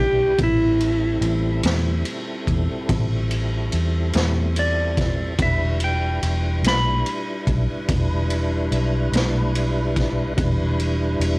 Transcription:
Already playing: B1 G3 D4 E4 B4
0.00 G4
0.37 A1 G3 C4 E4 A4, kick, ride
0.44 E4
0.80 ride
1.21 A1, ride
1.63 E2, snare, ride
2.05 ride
2.47 E2, kick, ride
2.89 A1, kick, ride
3.31 ride
3.72 E2, ride
4.13 E2, snare, ride
4.56 D5, ride
4.97 kick, snare, ride
5.38 E1 G3 D4 E4 B4, kick, ride
5.42 E5
5.80 ride
5.84 G5
6.23 E1, ride
6.63 B1, snare, ride
6.68 B5
7.06 ride
7.47 B1, kick, ride
7.88 E1, kick, ride
8.30 ride
8.71 B1, ride
9.12 B1, snare, ride
9.55 ride
9.96 kick, snare, ride
10.36 E1 G3 D4 E4 B4, kick, ride
10.79 ride
11.20 E1, ride

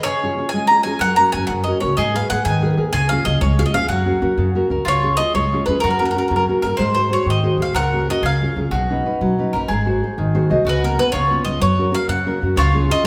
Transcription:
0.03 C#3 G#4 C#5
0.23 C#4 F4 G#4
0.37 C#4 F4 G#4
0.49 G#5
0.54 G#3
0.67 C#4 F4 A#5
0.71 G#4
0.83 C#4 F4 G#4 G#5
0.99 F#2 F#3 A#4 F#5
1.16 C#4 F#4 A#4 A#5
1.32 F#2 C#4 F#4 G#5
1.36 A#4
1.47 F#2 C#3 F#5
1.64 C#4 D#5
1.68 F#4 A#4
1.80 C#2 C#4 F#4 A#4 C#5
1.97 G#2 G#3 G#4 D#5
2.14 G#4 A#4 B4 F5
2.30 G#2 G#4 A#4 B4 F#5
2.45 G#2 D#3 G#5
2.62 G#4 A#4 B4
2.77 D#2 G#4 A#4 B4
2.93 C#2 C#3 G#4 G#5
3.09 C#4 F4 G#4 F5
3.25 C#2 C#4 F4 G#4 D#5
3.41 C#2 G#3 C#5
3.58 C#4 F4 G#4 F5
3.66 D#5
3.74 F2 C#4 F4 G#4 F5
3.88 F#2 F#3 F#4 F#5
4.06 C#4 F#4 A#4
4.22 F#2 C#4 F#4 A#4
4.37 F#2 C#3
4.55 C#4 F#4 A#4
4.70 C#2 C#4 F#4 A#4
4.85 C#2 C#3 F4 C#5
5.03 C#4 F4 G#4
5.17 C#4 F4 G#4 D#5
5.34 C#2 G#3 C#5
5.53 C#4 F4 G#4
5.66 F2 C#4 F4 B4
5.70 G#4
5.80 F#2 F#3 F#4 A#4
5.91 A#4
5.99 C#4 F#4 A#4
6.05 A#4
6.11 A#4
6.16 C#4 F#4 A#4
6.28 F#2 C#3 A#4
6.36 A#4
6.48 C#4 F#4 A#4
6.62 G2 C#4 F#4 A#4
6.77 G#2 G#3 C5
6.95 F#4 G#4 C5
7.10 F#4 G#4 C5 C#5
7.26 G#2 D#3
7.30 D#5
7.43 F#4 G#4 C5
7.58 D2 F#4 G#4 C5
7.62 F5
7.73 C#2 C#3 A#4 F#5
7.93 C#4 F#4 G#4
8.09 C#4 F#4 G#4 D#5
8.22 C#2 C#3 G#4 F5
8.42 C#4 F4 G#4
8.56 C#2 C#4 F4 G#4
8.71 B1 B2 F#4
8.90 C#4 D#4 B4
9.06 C#4 D#4 B4
9.21 B1 F#3
9.38 C#4 D#4 B4
9.53 A#1 C#4 D#4 A#4 B4
9.68 G#1 G#3 G#4
9.86 F#4 G#4 C5
10.03 F#4 G#4 C5
10.18 G#1 D#3
10.35 F#4 G#4 C5
10.50 C2 F#4 G#4 C5 D#5
10.65 C#2 C#3 F#4
10.69 B4
10.84 B3 C#4 F#4 A#4
10.98 B3 C#4 F#4 B4
11.12 C#2 C#3 F4 C#5
11.31 B3 C#4 F4
11.45 C#2 B3 C#4 F4 D#5
11.60 F#2 F#3 C#5
11.78 C#4 F#4 A#4
11.92 C#4 F#4 A#4 F5
12.08 F#2 C#3 F#5
12.26 C#4 F#4 A#4
12.41 F#2 C#4 F#4 A#4
12.56 C#2 C#3 F4 C#5
12.73 C#4 F4 G#4
12.89 C#4 F4 G#4 D#5
13.04 G#3

